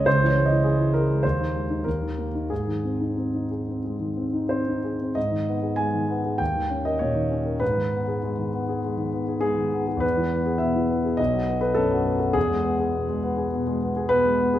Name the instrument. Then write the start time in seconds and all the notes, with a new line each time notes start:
grand piano
0.06 C#2 C5
0.23 E3 C#5
0.38 G#3
0.46 D#5
0.52 E4
0.64 G#4
0.80 E4
0.93 G#4 A#4
1.10 G#3
1.23 D#2 C5
1.39 D#3
1.54 G#3
1.70 D#4
1.84 D#2 A#4
2.02 D#3
2.18 A#3
2.35 D#4
2.50 G#2 G#4
2.68 D#3
2.84 C4
3.01 D#4
3.17 C4
3.34 D#4
3.51 G#4
3.68 C4
3.84 G#3
4.00 D#3
4.17 C4
4.33 D#4
4.49 C4 C5
4.68 D#4
4.84 G#4
5.01 C4
5.15 G#2 D#5
5.32 D#3
5.47 B3
5.62 G#4
5.76 G#3 G#5
5.94 D#3
6.08 B3
6.24 G#4
6.38 D#2 G5
6.55 D#3
6.70 C#4
6.85 A#4 D#5
6.99 A#2 C#5
7.15 D#3
7.30 C#4
7.45 A#4
7.60 G#2 B4
7.77 D#3
7.92 B3
8.08 G#4
8.23 G#3
8.38 D#3
8.53 B3
8.69 G#4
8.84 G#3
8.98 D#3
9.13 B3
9.28 G#4
9.41 G#3 G#4
9.57 D#3
9.73 B3
9.88 G#4
9.97 E2 B4
10.17 E3
10.32 B3
10.46 G#4
10.58 B2 E5
10.75 E3
10.90 B3
11.05 G#4
11.17 B1 D#5
11.33 F#3
11.47 B3
11.61 A4 B4
11.75 F#2 A4
11.91 F#3
12.05 B3
12.20 A4
12.33 E2 G#4
12.50 G#3
12.64 B3
12.80 G#4
12.94 B2
13.09 G#3
13.24 B3
13.38 G#4
13.54 B2
13.67 G#3
13.82 B3
13.96 G#4
14.09 B2 B4
14.25 G#3
14.39 B3
14.54 G#4